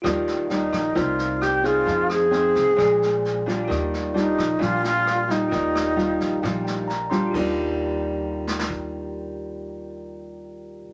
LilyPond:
<<
  \new Staff \with { instrumentName = "Tine electric piano" } { \time 4/4 \key ees \major \tempo 4 = 132 << { r1 | r1 | r1 | r4. ees''8 g''8 g''8 bes''8 c'''8 |
r1 | r1 | } \\ { <f' g' bes' d''>2 <ees' f' bes' d''>2 | <aes' c'' ees''>2 <c'' d'' g''>2 | <f' g' bes' d''>1 | <f' g' bes' d''>1 |
<f' g' bes' d''>1~ | <f' g' bes' d''>1 | } >> }
  \new Staff \with { instrumentName = "Alto flute" } { \time 4/4 \key ees \major r4 ees'4 f'4 g'8 f'8~ | f'8 aes'2. r8 | r4 ees'4 f'8 f'4 ees'8~ | ees'2. r4 |
r1 | r1 | }
  \new Staff \with { instrumentName = "Nylon-string guitar" } { \time 4/4 \key ees \major << { <g d' f'>4 <g d' f'>8 r8 <bes ees' f'>4. <c' ees' aes'>8~ | <c' ees' aes'>4 <c' ees' aes'>4 <aes d'>4. <g d' f'>8~ | <g d' f'>4 <g d' f'>8 r8 <g d' f'>4. <g f'>8~ | <g f'>4 <g f'>4 <g f'>4 r8 <g d' f'>8~ |
<g d' f'>4 r2. | r1 | } \\ { ees2 c2 | f2 bes,2 | ees2 bes,2 | ees2 bes,2 |
<ees g d' f'>1~ | <ees g d' f'>1 | } >> }
  \new Staff \with { instrumentName = "Upright bass" } { \clef bass \time 4/4 \key ees \major ees,4. bes,,8 c,2 | f,4. c,8 bes,,2 | ees,4. bes,,8 bes,,2 | ees,4. bes,,8 bes,,2 |
ees,1~ | ees,1 | }
  \new DrumStaff \with { instrumentName = "Drums" } \drummode { \time 4/4 <bd ss sn>8 sn8 sn8 <bd ss sn>8 <bd sn>8 sn8 <ss sn>8 <bd sn>8 | <bd sn>8 <ss sn>8 sn8 <bd sn>8 <bd ss sn>8 sn8 sn8 <bd sn>8 | <bd ss sn>8 sn8 sn8 <bd ss sn>8 <bd sn>8 sn8 <ss sn>8 <bd sn>8 | <bd sn>8 <ss sn>8 sn8 <bd sn>8 <bd ss sn>8 sn8 sn8 <bd sn>8 |
<cymc bd>4 r4 r8 sn16 sn16 bd4 | r4 r4 r4 r4 | }
>>